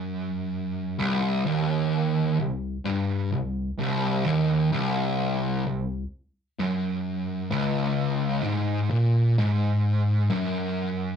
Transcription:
0.00 0.97 F#2 loud
0.99 1.44 C2 loud
1.45 2.37 D#2 loud
2.40 2.76 C2 medium
2.85 3.30 G2 loud
3.32 3.69 C2 medium
3.79 4.24 C2 loud
4.26 4.71 D#2 loud
4.72 5.64 C2 loud
5.67 6.03 C2 medium
6.59 7.50 F#2 loud
7.51 8.42 C#2 loud
8.42 8.88 G#2 loud
8.90 9.35 A#2 loud
9.38 10.29 G#2 loud
10.30 11.16 F#2 loud

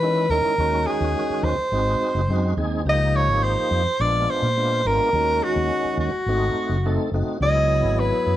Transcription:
0.00 0.26 D#3 medium
0.00 0.27 E3 medium
0.00 0.26 G#3 medium
0.00 0.27 C#4 medium
0.00 0.27 E4 medium
0.00 0.32 B4 loud
0.29 0.43 D#2 medium
0.29 0.55 D#3 medium
0.29 0.55 G#3 medium
0.29 0.55 C#4 medium
0.29 0.55 E4 medium
0.29 0.88 A#4 medium
0.58 0.85 D#2 medium
0.58 1.55 D#3 medium
0.58 1.56 G#3 medium
0.58 1.56 C#4 medium
0.58 1.56 F#4 medium
0.86 1.45 G#4 medium
1.01 1.14 D#2 medium
1.30 muted fretless electric bass stroke soft
1.43 1.57 D#2 loud
1.43 2.58 C5 medium
1.58 muted fretless electric bass stroke soft
1.72 1.99 G#1 medium
1.72 2.21 G#3 medium
1.72 2.21 C4 medium
1.72 2.21 D#4 medium
1.72 2.21 F#4 medium
2.00 muted fretless electric bass stroke soft
2.15 2.28 F#1 medium
2.29 2.55 F#2 medium
2.29 2.54 G#3 medium
2.29 2.54 C4 medium
2.29 2.54 D#4 medium
2.29 2.54 F#4 medium
2.57 2.83 D#2 medium
2.57 2.82 G#3 medium
2.57 2.82 C4 medium
2.57 2.82 D#4 medium
2.57 2.82 G#4 medium
2.85 3.26 C#2 loud
2.85 3.83 F3 medium
2.85 3.83 A#3 medium
2.85 3.83 D#4 medium
2.85 3.83 G4 medium
2.89 3.17 D#5 loud
3.16 3.45 C#5 loud
3.28 3.55 G#1 medium
3.44 4.02 C5 loud
3.71 3.85 F2 medium
4.00 4.26 A#1 medium
4.00 4.49 G#3 medium
4.00 4.49 B3 medium
4.00 4.49 D4 medium
4.00 4.49 F4 medium
4.00 4.31 D5 medium
4.30 4.88 C5 medium
4.42 4.82 A#2 medium
4.57 4.81 G#3 medium
4.57 4.81 B3 medium
4.57 4.82 D4 medium
4.57 4.82 F4 medium
4.85 4.99 G#1 medium
4.85 5.10 G#3 medium
4.85 5.10 B3 medium
4.85 5.10 D4 medium
4.85 5.10 F4 medium
4.85 5.45 A#4 loud
5.00 muted fretless electric bass stroke soft
5.13 5.40 D#2 medium
5.13 6.11 D#3 medium
5.13 6.11 G#3 medium
5.13 6.11 C#4 medium
5.13 6.11 F#4 medium
5.44 6.00 F#4 medium
5.56 5.70 D#2 medium
5.85 muted fretless electric bass stroke soft
5.98 6.12 D#2 loud
5.98 7.10 F#4 medium
6.26 6.54 G#1 medium
6.26 6.77 A3 medium
6.26 6.77 C4 medium
6.26 6.77 D#4 medium
6.26 6.77 F#4 medium
6.69 6.97 F#1 medium
6.86 7.10 A3 medium
6.86 7.10 C4 medium
6.86 7.10 D#4 medium
6.86 7.10 A4 medium
7.12 7.26 F#1 medium
7.12 7.38 A3 medium
7.12 7.38 C4 medium
7.12 7.38 D#4 medium
7.12 7.38 F#4 medium
7.27 muted fretless electric bass stroke soft
7.41 7.81 C#2 loud
7.41 8.37 F#3 medium
7.41 8.37 B3 medium
7.41 8.37 E4 medium
7.41 8.37 G#4 medium
7.41 8.01 D#5 loud
7.83 8.11 G#1 medium
8.00 8.37 B4 medium
8.27 8.37 F#2 medium

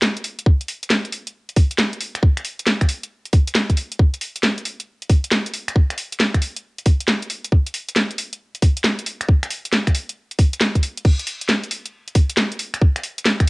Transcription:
0.02 snare loud
0.17 closed hi-hat soft
0.24 open hi-hat loud
0.39 closed hi-hat medium
0.46 kick loud
0.61 closed hi-hat soft
0.68 open hi-hat loud
0.83 closed hi-hat medium
0.90 snare loud
1.05 closed hi-hat soft
1.12 open hi-hat loud
1.27 closed hi-hat medium
1.49 closed hi-hat soft
1.56 kick loud
1.56 open hi-hat loud
1.71 closed hi-hat medium
1.78 snare loud
1.93 closed hi-hat soft
2.01 open hi-hat loud
2.15 finger snap medium
2.15 closed hi-hat medium
2.23 kick loud
2.37 finger snap medium
2.37 closed hi-hat medium
2.45 open hi-hat loud
2.59 closed hi-hat medium
2.67 snare loud
2.81 finger snap medium
2.81 kick medium
2.81 closed hi-hat soft
2.89 open hi-hat loud
3.03 closed hi-hat medium
3.25 closed hi-hat soft
3.33 kick loud
3.33 open hi-hat medium
3.48 closed hi-hat medium
3.55 snare loud
3.70 kick medium
3.70 closed hi-hat soft
3.77 open hi-hat loud
3.92 closed hi-hat medium
3.99 kick loud
4.14 closed hi-hat medium
4.21 open hi-hat loud
4.36 closed hi-hat medium
4.43 snare loud
4.58 closed hi-hat soft
4.65 open hi-hat loud
4.80 closed hi-hat medium
5.02 closed hi-hat soft
5.10 kick loud
5.10 open hi-hat medium
5.24 closed hi-hat medium
5.32 snare loud
5.46 closed hi-hat medium
5.54 open hi-hat medium
5.68 finger snap medium
5.68 closed hi-hat medium
5.76 kick loud
5.90 finger snap medium
5.90 closed hi-hat medium
5.98 open hi-hat loud
6.12 closed hi-hat medium
6.20 snare loud
6.34 finger snap medium
6.34 kick medium
6.34 closed hi-hat soft
6.42 open hi-hat loud
6.56 closed hi-hat medium
6.78 closed hi-hat soft
6.86 kick loud
6.86 open hi-hat medium
7.00 closed hi-hat medium
7.08 snare loud
7.22 closed hi-hat medium
7.30 open hi-hat loud
7.44 closed hi-hat medium
7.52 kick loud
7.66 closed hi-hat medium
7.74 open hi-hat loud
7.89 closed hi-hat medium
7.96 snare loud
8.11 closed hi-hat soft
8.18 open hi-hat loud
8.33 closed hi-hat medium
8.55 closed hi-hat soft
8.62 kick loud
8.62 open hi-hat loud
8.77 closed hi-hat medium
8.84 snare loud
8.99 closed hi-hat medium
9.06 open hi-hat loud
9.21 finger snap medium
9.21 closed hi-hat medium
9.29 kick loud
9.43 finger snap medium
9.43 closed hi-hat medium
9.51 open hi-hat loud
9.65 closed hi-hat medium
9.73 snare loud
9.87 finger snap medium
9.87 kick medium
9.87 closed hi-hat soft
9.95 open hi-hat loud
10.09 closed hi-hat medium
10.31 closed hi-hat soft
10.39 kick loud
10.39 open hi-hat loud
10.53 closed hi-hat medium
10.61 snare loud
10.75 kick medium
10.75 closed hi-hat medium
10.83 open hi-hat loud
10.97 closed hi-hat medium
11.05 kick loud
11.05 crash medium
11.19 closed hi-hat medium
11.27 open hi-hat loud
11.41 closed hi-hat medium
11.49 snare loud
11.64 closed hi-hat soft
11.71 open hi-hat loud
11.86 closed hi-hat medium
12.08 closed hi-hat soft
12.15 kick loud
12.15 open hi-hat loud
12.30 closed hi-hat medium
12.37 snare loud
12.52 closed hi-hat soft
12.59 open hi-hat loud
12.74 finger snap medium
12.74 closed hi-hat medium
12.81 kick loud
12.96 finger snap medium
12.96 closed hi-hat medium
13.03 open hi-hat loud
13.18 closed hi-hat medium
13.25 snare loud
13.40 finger snap medium
13.40 kick medium
13.40 closed hi-hat soft

